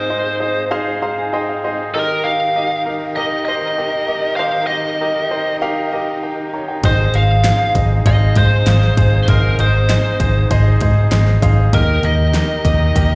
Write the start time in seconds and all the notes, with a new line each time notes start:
Already playing: G#2 G#3 C4 D#4 G#4 C5 D#5 F5
0.10 D#4 G#4 C5 D#5
0.40 D#4 G#4 C5 D#5
0.71 D#4 G#4 C5 F5
1.02 D#4 G#4 C5 F5 A#5
1.18 G#5
1.33 D#4 G#4 C5 D#5 G5
1.49 F5
1.64 D#4 G#4 C5 D#5
1.94 D#3 D#4 G4 A#4 D#5
2.24 D#4 G4 A#4 D#5 F5
2.56 D#4 G4 A#4 D#5
2.86 D#4 G4 A#4 F5
3.16 D#4 G4 A#4 D#5
3.45 D#4 G4 A#4 C5 D#5
3.78 D#4 G4 A#4 D#5
4.08 D#4 G4 A#4 D#5
4.36 D#3 D#4 G4 A#4 C5 F5
4.67 D#4 G4 A#4 D#5
5.01 D#4 G4 A#4 D#5
5.31 D#4 G4 A#4 C5
5.62 D#4 G4 A#4 F5
5.92 D#4 G4 A#4 D#5
6.23 A#4 G5
6.53 C#5 A#5
6.68 A#4 G5
6.83 G#1 G#2 G#3 C4 D#4 G#4 C5 D#5, kick, closed hi-hat
7.14 G#1 D#4 G#4 C5 D#5 F5, closed hi-hat
7.44 D#4 G#4 C5 F5, snare, closed hi-hat
7.75 G#1 D#4 G#4 C5 D#5, kick, closed hi-hat
8.05 G#1 D#4 G#4 C5 D#5 F5, kick, closed hi-hat
8.36 G#2 D#4 G#4 C5 D#5, kick, closed hi-hat
8.66 G#1 D#4 G#4 C5 F5, snare, closed hi-hat
8.82 snare
8.97 G#1 D#4 G#4 C5 F5, kick, closed hi-hat
9.28 G#1 G#2 D#4 G#4 A#4 C5 D#5, kick, closed hi-hat
9.59 G#1 D#4 G#4 C5 D#5, closed hi-hat
9.89 D#4 G#4 C5 D#5, snare, closed hi-hat
10.20 G#1 D#4 G#4 C5 D#5, kick, closed hi-hat
10.51 G#1 D#4 G#4 C5 D#5, kick, closed hi-hat
10.81 G#2 D#4 G#4 C5 D#5, kick, closed hi-hat
11.11 G#1 D#4 G#4 C5 D#5, snare, closed hi-hat
11.27 snare
11.42 G#1 D#4 G#4 C5 F5, kick, closed hi-hat
11.73 D#2 D#3 D#4 G4 A#4 D#5, kick, closed hi-hat
12.03 D#2 D#4 G4 A#4 D#5, closed hi-hat
12.34 D#4 G4 A#4 D#5, snare, closed hi-hat
12.65 D#2 D#4 G4 A#4 D#5, kick, closed hi-hat
12.96 D#2 D#4 G4 A#4 D#5, kick, closed hi-hat